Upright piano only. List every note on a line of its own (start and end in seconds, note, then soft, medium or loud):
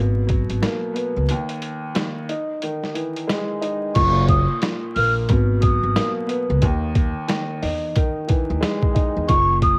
0.00 1.29 B2 medium
0.27 1.28 F#3 medium
0.62 1.29 A#3 medium
0.93 1.28 B3 medium
1.31 1.93 D#2 medium
1.95 2.29 D#2 medium
2.29 3.60 D#4 medium
2.63 3.96 D#3 medium
2.94 3.95 E3 medium
3.27 3.95 G#3 medium
3.61 3.95 D#4 medium
3.95 4.60 A#2 medium
4.62 5.29 A#2 medium
4.97 5.30 A#3 medium
5.29 6.63 B2 medium
5.60 6.61 F#3 medium
5.95 6.62 A#3 medium
6.27 6.61 B3 medium
6.64 7.27 D#2 loud
7.28 7.62 D#2 medium
7.63 8.93 D#4 medium
7.97 9.30 D#3 medium
8.28 9.28 E3 medium
8.61 9.28 G#3 medium
8.95 9.29 D#4 medium
9.29 9.79 A#2 medium